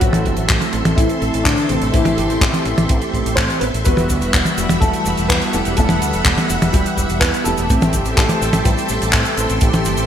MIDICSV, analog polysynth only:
0, 0, Header, 1, 2, 480
1, 0, Start_track
1, 0, Tempo, 480000
1, 16, Time_signature, 4, 2, 24, 8
1, 10063, End_track
2, 0, Start_track
2, 0, Title_t, "Analog polysynth"
2, 0, Program_c, 0, 90
2, 16, Note_on_c, 0, 52, 97
2, 16, Note_on_c, 0, 69, 105
2, 17, Note_on_c, 0, 57, 86
2, 17, Note_on_c, 0, 60, 91
2, 1667, Note_off_c, 0, 52, 0
2, 1667, Note_off_c, 0, 69, 0
2, 1668, Note_off_c, 0, 57, 0
2, 1668, Note_off_c, 0, 60, 0
2, 1696, Note_on_c, 0, 52, 98
2, 1696, Note_on_c, 0, 57, 84
2, 1696, Note_on_c, 0, 60, 83
2, 1697, Note_on_c, 0, 69, 99
2, 1900, Note_off_c, 0, 52, 0
2, 1900, Note_off_c, 0, 57, 0
2, 1900, Note_off_c, 0, 60, 0
2, 1900, Note_off_c, 0, 69, 0
2, 1937, Note_on_c, 0, 52, 95
2, 1937, Note_on_c, 0, 57, 85
2, 1937, Note_on_c, 0, 60, 85
2, 1937, Note_on_c, 0, 67, 102
2, 3587, Note_off_c, 0, 57, 0
2, 3587, Note_off_c, 0, 67, 0
2, 3588, Note_off_c, 0, 52, 0
2, 3588, Note_off_c, 0, 60, 0
2, 3858, Note_on_c, 0, 52, 96
2, 3858, Note_on_c, 0, 55, 91
2, 3858, Note_on_c, 0, 59, 88
2, 3858, Note_on_c, 0, 66, 102
2, 5508, Note_off_c, 0, 52, 0
2, 5508, Note_off_c, 0, 55, 0
2, 5508, Note_off_c, 0, 59, 0
2, 5508, Note_off_c, 0, 66, 0
2, 5538, Note_on_c, 0, 52, 94
2, 5538, Note_on_c, 0, 55, 85
2, 5538, Note_on_c, 0, 59, 85
2, 5538, Note_on_c, 0, 67, 101
2, 5741, Note_off_c, 0, 52, 0
2, 5741, Note_off_c, 0, 55, 0
2, 5741, Note_off_c, 0, 59, 0
2, 5741, Note_off_c, 0, 67, 0
2, 5779, Note_on_c, 0, 52, 91
2, 5779, Note_on_c, 0, 55, 88
2, 5779, Note_on_c, 0, 78, 105
2, 5780, Note_on_c, 0, 59, 91
2, 7428, Note_off_c, 0, 52, 0
2, 7428, Note_off_c, 0, 55, 0
2, 7428, Note_off_c, 0, 78, 0
2, 7429, Note_off_c, 0, 59, 0
2, 7456, Note_on_c, 0, 67, 101
2, 7457, Note_on_c, 0, 59, 83
2, 7458, Note_on_c, 0, 52, 93
2, 7458, Note_on_c, 0, 55, 83
2, 7660, Note_off_c, 0, 59, 0
2, 7660, Note_off_c, 0, 67, 0
2, 7661, Note_off_c, 0, 52, 0
2, 7661, Note_off_c, 0, 55, 0
2, 7696, Note_on_c, 0, 52, 98
2, 7696, Note_on_c, 0, 57, 86
2, 7696, Note_on_c, 0, 60, 87
2, 7696, Note_on_c, 0, 67, 109
2, 9347, Note_off_c, 0, 52, 0
2, 9347, Note_off_c, 0, 57, 0
2, 9347, Note_off_c, 0, 60, 0
2, 9347, Note_off_c, 0, 67, 0
2, 9377, Note_on_c, 0, 52, 93
2, 9377, Note_on_c, 0, 60, 87
2, 9378, Note_on_c, 0, 57, 88
2, 9378, Note_on_c, 0, 69, 99
2, 9580, Note_off_c, 0, 52, 0
2, 9580, Note_off_c, 0, 60, 0
2, 9581, Note_off_c, 0, 57, 0
2, 9581, Note_off_c, 0, 69, 0
2, 9618, Note_on_c, 0, 52, 93
2, 9618, Note_on_c, 0, 57, 87
2, 9618, Note_on_c, 0, 60, 88
2, 9618, Note_on_c, 0, 67, 108
2, 10063, Note_off_c, 0, 52, 0
2, 10063, Note_off_c, 0, 57, 0
2, 10063, Note_off_c, 0, 60, 0
2, 10063, Note_off_c, 0, 67, 0
2, 10063, End_track
0, 0, End_of_file